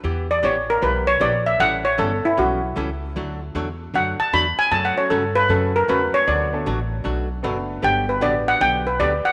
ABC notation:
X:1
M:4/4
L:1/16
Q:"Swing" 1/4=154
K:D
V:1 name="Steel pan"
z2 d2 c2 _B2 =B2 c2 d2 e2 | f2 c2 A2 E2 F6 z2 | z8 f2 a2 b2 ^g2 | (3a2 f2 c2 A2 B2 A2 _B2 =B2 c2 |
d6 z8 z2 | g2 B2 d2 f2 g2 B2 d2 f2 |]
V:2 name="Upright piano"
z16 | z16 | z16 | z2 [F,A,CFA]2 z8 [F,A,CFA]4 |
z2 [A,B,DFA]2 z8 [A,B,DFB]4 | [G,B,DFG]4 [G,B,DFG]6 z6 |]
V:3 name="Hollow-body jazz guitar"
[E,B,EG]2 z2 [E,B,EG] z3 [E,B,EG]2 z2 [E,B,EG] z3 | [E,G,CEA]2 z2 [E,G,CEA] z3 [E,G,CEA]2 z2 [E,G,CEA] z3 | [D,F,A,DF]2 z2 [D,F,A,DF] z3 [D,F,A,DF]2 z2 [D,F,A,DF] z3 | [C,F,A,CF]2 z2 [C,F,A,CF] z3 [C,F,A,CF]2 z2 [C,F,A,CF] z3 |
[B,,F,A,DF]2 z2 [B,,F,A,DF] z3 [B,,F,A,DF]2 z2 [B,,F,A,DF] z3 | [D,F,B,DG]2 z2 [D,F,B,DG] z3 [D,F,B,DG]2 z2 [D,F,B,DG] z3 |]
V:4 name="Upright bass" clef=bass
E,,4 A,,,4 B,,,4 _B,,,4 | A,,,4 G,,,2 z2 B,,,4 C,,4 | D,,4 E,,4 F,,2 z2 E,,2 z2 | F,,2 z2 G,,4 F,,4 E,,2 z2 |
D,,4 A,,,4 B,,,4 F,,,4 | G,,,4 A,,,4 B,,,4 D,,2 z2 |]